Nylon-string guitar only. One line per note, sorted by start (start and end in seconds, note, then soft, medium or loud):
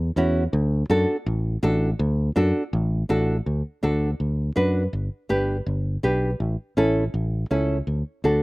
0.17 0.42 C#4 medium
0.17 0.43 E4 medium
0.17 0.43 F#4 medium
0.90 1.15 D4 medium
0.90 1.16 F#4 medium
0.90 1.16 A4 loud
1.63 1.89 D4 medium
1.63 1.89 F#4 medium
1.63 1.89 A4 loud
2.36 2.62 D4 medium
2.36 2.62 F#4 medium
2.36 2.62 A4 medium
3.09 3.35 D4 medium
3.09 3.35 F#4 medium
3.09 3.36 A4 medium
3.83 4.09 D4 medium
3.83 4.09 F#4 medium
3.83 4.09 A4 medium
4.56 4.82 D4 medium
4.56 4.82 F#4 medium
4.56 4.82 B4 medium
5.29 5.56 D4 medium
5.29 5.56 G4 medium
5.29 5.56 B4 medium
6.03 6.29 D4 medium
6.03 6.29 G4 medium
6.03 6.30 B4 medium
6.77 7.03 C#4 medium
6.77 7.03 E4 medium
6.77 7.03 A4 medium
7.51 7.76 C#4 medium
7.51 7.77 E4 medium
7.51 7.77 A4 medium
8.24 8.43 D4 medium
8.24 8.43 F#4 medium
8.24 8.43 A4 medium